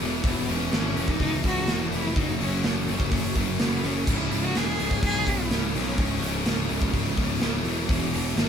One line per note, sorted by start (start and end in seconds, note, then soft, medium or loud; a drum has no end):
0.00 0.24 E1 loud
0.00 0.23 E2 loud
0.00 0.24 B2 loud
0.00 0.25 E3 loud
0.00 open hi-hat medium
0.23 0.47 E1 loud
0.23 0.45 E2 loud
0.23 0.46 B2 loud
0.23 0.47 E3 loud
0.23 0.50 B3 medium
0.23 kick loud
0.23 open hi-hat medium
0.46 0.71 E1 medium
0.46 0.70 E2 medium
0.46 0.71 B2 medium
0.46 0.72 E3 medium
0.46 1.11 C#4 loud
0.46 snare soft
0.46 open hi-hat medium
0.71 0.95 G#1 medium
0.71 0.94 E2 medium
0.71 0.95 B2 medium
0.71 0.96 E3 loud
0.71 snare loud
0.71 open hi-hat medium
0.96 1.19 E1 loud
0.96 1.19 E2 loud
0.96 1.20 B2 loud
0.96 1.20 E3 loud
0.96 open hi-hat medium
1.08 1.45 D#4 loud
1.08 kick loud
1.20 1.43 C#2 medium
1.20 1.43 E2 medium
1.20 1.43 B2 medium
1.20 1.44 E3 loud
1.20 kick loud
1.20 open hi-hat medium
1.44 1.67 C#2 loud
1.44 1.67 E2 loud
1.44 1.68 B2 loud
1.44 1.68 E3 loud
1.44 1.90 F#4 medium
1.44 kick medium
1.44 open hi-hat medium
1.67 1.91 E1 medium
1.67 1.89 E2 medium
1.67 1.90 B2 loud
1.67 1.90 E3 loud
1.67 snare loud
1.67 open hi-hat medium
1.90 2.15 F1 medium
1.90 2.13 E2 loud
1.90 2.14 B2 medium
1.90 2.14 E3 loud
1.90 open hi-hat medium
1.94 2.20 E4 medium
2.16 2.39 F#1 loud
2.16 2.38 F#2 medium
2.16 2.39 C#3 loud
2.16 2.39 F#3 loud
2.16 2.41 D#4 loud
2.16 kick loud
2.16 open hi-hat medium
2.40 2.63 F#1 medium
2.40 2.63 F#2 medium
2.40 2.64 C#3 medium
2.40 2.64 F#3 medium
2.40 open hi-hat medium
2.44 2.68 C#4 medium
2.64 2.86 F#1 loud
2.64 2.86 F#2 medium
2.64 2.87 C#3 medium
2.64 2.87 F#3 medium
2.64 3.63 A#3 medium
2.64 snare loud
2.64 open hi-hat medium
2.87 3.11 F#1 loud
2.87 3.11 F#2 loud
2.87 3.11 C#3 loud
2.87 3.12 F#3 loud
2.87 open hi-hat medium
3.00 kick loud
3.12 3.34 F#1 medium
3.12 3.34 F#2 medium
3.12 3.35 C#3 medium
3.12 3.36 F#3 medium
3.12 kick loud
3.12 open hi-hat medium
3.35 3.58 F#1 medium
3.35 3.58 F#2 medium
3.35 3.58 C#3 medium
3.35 3.59 F#3 loud
3.35 kick medium
3.35 open hi-hat medium
3.59 3.83 F#1 medium
3.59 3.82 F#2 medium
3.59 3.83 C#3 loud
3.59 3.83 F#3 medium
3.59 3.88 B3 loud
3.59 snare loud
3.59 open hi-hat medium
3.84 4.07 F#1 loud
3.84 4.06 F#2 medium
3.84 4.06 C#3 medium
3.84 4.06 F#3 loud
3.84 4.09 C#4 loud
3.84 open hi-hat medium
4.07 4.30 C#1 loud
4.07 4.31 C#2 medium
4.07 4.31 G#2 medium
4.07 4.32 C#3 loud
4.07 4.46 E4 medium
4.07 kick loud
4.07 crash loud
4.31 4.54 C#1 loud
4.31 4.53 C#2 medium
4.31 4.53 G#2 medium
4.31 4.55 C#3 medium
4.31 open hi-hat medium
4.44 4.59 F#4 loud
4.54 4.78 E1 loud
4.54 4.77 C#2 medium
4.54 4.78 G#2 medium
4.54 4.79 C#3 medium
4.54 5.04 G#4 loud
4.54 snare loud
4.54 open hi-hat medium
4.78 5.02 C#1 loud
4.78 5.01 C#2 loud
4.78 5.01 G#2 loud
4.78 5.02 C#3 loud
4.78 open hi-hat medium
4.91 kick medium
5.02 5.26 B1 medium
5.02 5.25 C#2 medium
5.02 5.26 G#2 medium
5.02 5.26 C#3 loud
5.02 5.30 G#4 loud
5.02 kick loud
5.02 open hi-hat medium
5.26 5.49 B1 medium
5.26 5.49 C#2 medium
5.26 5.50 G#2 medium
5.26 5.51 C#3 loud
5.26 5.76 E4 loud
5.26 kick medium
5.26 open hi-hat medium
5.50 5.73 C#1 medium
5.50 5.72 C#2 medium
5.50 5.73 G#2 loud
5.50 5.73 C#3 loud
5.50 snare loud
5.50 open hi-hat medium
5.73 5.97 B1 medium
5.73 5.96 C#2 medium
5.73 5.97 G#2 medium
5.73 5.98 C#3 medium
5.73 6.67 C#4 medium
5.73 open hi-hat medium
5.87 snare soft
5.97 6.21 C#1 loud
5.97 6.19 C#2 medium
5.97 6.20 G#2 medium
5.97 6.21 C#3 loud
5.97 kick loud
5.97 open hi-hat medium
6.20 6.44 C#1 loud
6.20 6.44 C#2 medium
6.20 6.44 G#2 medium
6.20 6.45 C#3 medium
6.20 snare soft
6.20 open hi-hat medium
6.45 6.68 C#1 loud
6.45 6.67 C#2 medium
6.45 6.68 G#2 loud
6.45 6.69 C#3 loud
6.45 snare loud
6.45 open hi-hat medium
6.69 6.93 C#1 loud
6.69 6.91 C#2 loud
6.69 6.92 G#2 loud
6.69 6.92 C#3 loud
6.69 open hi-hat medium
6.82 kick loud
6.92 7.16 C#1 medium
6.92 7.15 C#2 medium
6.92 7.16 G#2 medium
6.92 7.17 C#3 medium
6.92 kick loud
6.92 open hi-hat medium
7.16 7.40 C#1 medium
7.16 7.39 C#2 medium
7.16 7.41 G#2 loud
7.16 7.41 C#3 loud
7.16 kick loud
7.16 open hi-hat medium
7.40 7.64 C#1 medium
7.40 7.62 C#2 medium
7.40 7.63 G#2 medium
7.40 7.63 C#3 loud
7.40 snare loud
7.40 open hi-hat medium
7.63 7.88 E1 loud
7.63 7.86 E2 loud
7.63 7.86 B2 loud
7.63 7.87 E3 loud
7.63 open hi-hat medium
7.87 8.11 E1 loud
7.87 8.11 E2 loud
7.87 8.11 B2 loud
7.87 8.12 E3 loud
7.87 kick loud
7.87 open hi-hat medium
7.91 8.38 G#3 medium
8.11 8.35 E1 loud
8.11 8.35 E2 medium
8.11 8.35 B2 medium
8.11 8.35 E3 loud
8.11 open hi-hat medium
8.36 8.49 G#1 loud
8.36 8.49 E2 medium
8.36 8.49 B2 medium
8.36 8.49 E3 loud
8.36 8.49 A#3 medium
8.36 snare loud
8.36 open hi-hat medium